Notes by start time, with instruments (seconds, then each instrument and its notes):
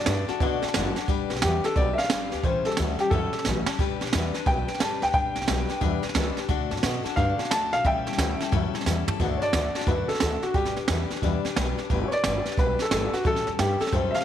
Already playing: upright piano D5
0.01 snare
0.06 upright bass G2, steel-string acoustic guitar A3 D4 F#4 A4, snare, hi-hat pedal
0.28 steel-string acoustic guitar D4 F#4 A4, muted upright bass stroke, snare
0.40 upright bass B2, steel-string acoustic guitar D3 A3 D4 F#4 A4, kick, snare
0.62 steel-string acoustic guitar D4 F#4 A4, muted upright bass stroke, snare
0.68 snare
0.74 upright bass F#1, steel-string acoustic guitar A3 D4 F#4 A4, snare, hi-hat pedal
0.96 steel-string acoustic guitar D4 F#4 A4, muted upright bass stroke, snare
1.08 upright bass G1, steel-string acoustic guitar G3 D4 G4 B4, kick, snare
1.30 upright bass B1, steel-string acoustic guitar D4 G4 B4, snare
1.36 snare
1.42 upright bass E2, steel-string acoustic guitar G3 D4 G4 B4, upright piano G4, snare, hi-hat pedal
1.64 steel-string acoustic guitar D4 G4 B4, upright piano A4, muted upright bass stroke, snare
1.76 upright bass B1, steel-string acoustic guitar G3 D4 G4 B4, upright piano D5, kick, snare
1.93 upright piano E5
1.98 steel-string acoustic guitar D4 G4 B4, upright piano F5, snare
2.04 snare
2.10 upright bass G1, steel-string acoustic guitar G3 D4 G4 B4, snare, hi-hat pedal
2.32 upright bass D2, steel-string acoustic guitar D4 G4 B4, snare
2.43 upright bass A1, steel-string acoustic guitar A2 E3 G3 C#4 G4 A4, upright piano C5, kick, snare
2.65 upright bass C#2, steel-string acoustic guitar G3 C#4 G4 A4, upright piano A4, snare
2.71 snare
2.77 upright bass D2, steel-string acoustic guitar G3 C#4 G4 A4, snare, hi-hat pedal
2.99 steel-string acoustic guitar G3 C#4 G4 A4, upright piano G4, snare
3.10 upright bass F#2, steel-string acoustic guitar A2 E3 G3 C#4 G4 A4, upright piano A4, kick, snare
3.33 steel-string acoustic guitar G3 C#4 G4 A4, muted upright bass stroke, snare
3.39 snare
3.45 upright bass A1, steel-string acoustic guitar G3 C#4 G4 A4, snare, hi-hat pedal
3.66 steel-string acoustic guitar G3 C#4 G4 A4, muted upright bass stroke, snare
3.79 upright bass G1, steel-string acoustic guitar G3 D4 G4 B4, kick, snare
4.01 upright bass B1, steel-string acoustic guitar D4 G4 B4, snare
4.07 snare
4.13 upright bass E2, steel-string acoustic guitar G3 D4 G4 B4, snare, hi-hat pedal
4.34 steel-string acoustic guitar D4 G4 B4, muted upright bass stroke, snare
4.46 upright bass B1, steel-string acoustic guitar G3 D4 G4 B4, upright piano G5, kick, snare
4.68 steel-string acoustic guitar D4 G4 B4, muted upright bass stroke, snare
4.74 snare
4.80 upright bass G1, steel-string acoustic guitar G3 D4 G4 B4, upright piano A5, snare, hi-hat pedal
5.02 upright bass D2, steel-string acoustic guitar D4 G4 B4, upright piano G5, snare
5.13 upright bass G1, steel-string acoustic guitar G3 D4 G4 B4, upright piano G5, kick, snare
5.35 upright bass B1, steel-string acoustic guitar D4 G4 B4, snare
5.42 snare
5.47 upright bass B1, steel-string acoustic guitar G3 D4 G4 B4, snare, hi-hat pedal
5.69 steel-string acoustic guitar D4 G4 B4, snare
5.81 upright bass E2, steel-string acoustic guitar G3 D4 G4 B4, kick, snare
6.02 steel-string acoustic guitar D4 G4 B4, muted upright bass stroke, snare
6.09 snare
6.15 upright bass C#2, steel-string acoustic guitar G3 D4 G4 B4, snare, hi-hat pedal
6.36 steel-string acoustic guitar D4 G4 B4, muted upright bass stroke, snare
6.48 upright bass D2, steel-string acoustic guitar D3 A3 D4 F#4 A4, kick, snare
6.71 upright bass G2, steel-string acoustic guitar D4 F#4 A4, snare
6.77 snare
6.82 upright bass B2, steel-string acoustic guitar A3 D4 F#4 A4, snare, hi-hat pedal
7.04 steel-string acoustic guitar D4 F#4 A4, muted upright bass stroke, snare
7.16 upright bass G2, steel-string acoustic guitar D3 A3 D4 F#4 A4, upright piano F5, kick, snare
7.38 steel-string acoustic guitar D4 F#4 A4, muted upright bass stroke, snare
7.45 snare
7.51 upright bass D2, steel-string acoustic guitar A3 D4 F#4 A4, upright piano A5, snare, hi-hat pedal
7.73 upright bass B1, steel-string acoustic guitar D4 F#4 A4, upright piano F5, snare
7.84 upright bass A1, steel-string acoustic guitar A2 E3 G3 C#4 E4 A4, upright piano E5 G5, kick, snare
8.06 upright bass C#2, steel-string acoustic guitar G3 C#4 E4 A4, snare
8.13 snare
8.18 upright bass D2, steel-string acoustic guitar G3 C#4 E4 A4, snare, hi-hat pedal
8.40 steel-string acoustic guitar G3 C#4 E4 A4, muted upright bass stroke, snare
8.52 upright bass F#2, steel-string acoustic guitar A2 E3 G3 C#4 E4 A4, kick, snare
8.74 steel-string acoustic guitar G3 C#4 E4 A4, muted upright bass stroke, snare
8.81 snare
8.86 upright bass E2, steel-string acoustic guitar G3 C#4 E4 A4, snare, hi-hat pedal
9.08 steel-string acoustic guitar G3 C#4 E4 A4, muted upright bass stroke, floor tom
9.20 upright bass D2, steel-string acoustic guitar D3 A3 D4 F#4 A4, kick, snare
9.38 upright piano C#5
9.42 steel-string acoustic guitar D4 F#4 A4, upright piano D5, muted upright bass stroke, snare
9.53 upright bass D2, steel-string acoustic guitar A3 D4 F#4 A4, snare, hi-hat pedal
9.75 steel-string acoustic guitar D4 F#4 A4, muted upright bass stroke, snare
9.81 snare
9.87 upright bass F#2, steel-string acoustic guitar D3 A3 D4 F#4 A4, upright piano B4, kick, snare
10.08 steel-string acoustic guitar D4 F#4 A4, upright piano A4, muted upright bass stroke, snare
10.15 snare
10.20 upright bass D2, steel-string acoustic guitar A3 D4 F#4 A4, upright piano A4, snare, hi-hat pedal
10.42 steel-string acoustic guitar D4 F#4 A4, upright piano F#4, snare
10.54 upright bass G1, steel-string acoustic guitar G3 D4 G4 B4, upright piano G4, kick, snare
10.65 snare
10.76 upright bass D2, steel-string acoustic guitar D4 G4 B4, snare
10.88 upright bass E2, steel-string acoustic guitar G3 D4 G4 B4, snare, hi-hat pedal
11.10 steel-string acoustic guitar D4 G4 B4, muted upright bass stroke, snare
11.16 snare
11.22 upright bass E2, steel-string acoustic guitar G3 D4 G4 B4, kick, snare
11.44 steel-string acoustic guitar D4 G4 B4, muted upright bass stroke, snare
11.56 upright bass B1, steel-string acoustic guitar G3 D4 G4 B4, snare, hi-hat pedal
11.78 steel-string acoustic guitar D4 G4 B4, muted upright bass stroke, snare
11.90 upright bass G1, steel-string acoustic guitar G3 D4 G4 B4, kick, snare
12.08 steel-string acoustic guitar B4, upright piano C#5, snare
12.13 steel-string acoustic guitar D4 G4, upright piano D5, muted upright bass stroke
12.24 upright bass G1, steel-string acoustic guitar G3 D4 G4 B4, snare, hi-hat pedal
12.45 steel-string acoustic guitar D4 G4 B4, muted upright bass stroke, snare
12.52 snare
12.58 upright bass B1, steel-string acoustic guitar G3 D4 G4 B4, upright piano B4, kick, snare
12.79 steel-string acoustic guitar D4 G4 B4, upright piano A4, snare
12.85 snare
12.91 upright bass G1, steel-string acoustic guitar G3 D4 G4 B4, upright piano A4, snare, hi-hat pedal
13.13 steel-string acoustic guitar D4 G4 B4, upright piano F#4, muted upright bass stroke, snare
13.25 upright bass A1, steel-string acoustic guitar A2 E3 G3 C#4 G4 A4, upright piano A4, kick, snare
13.36 snare
13.47 upright bass E2, steel-string acoustic guitar G3 C#4 G4 A4, snare
13.59 upright bass G2, steel-string acoustic guitar G3 C#4 G4 A4, upright piano G4, snare, hi-hat pedal
13.80 steel-string acoustic guitar G3 C#4 G4 A4, upright piano A4, muted upright bass stroke, snare
13.87 snare
13.92 upright bass F#2, steel-string acoustic guitar A2 E3 G3 C#4 G4 A4, upright piano C5, kick, snare
14.11 steel-string acoustic guitar G4 A4, upright piano E5, muted upright bass stroke, snare
14.15 steel-string acoustic guitar G3 C#4, upright piano F5
14.20 snare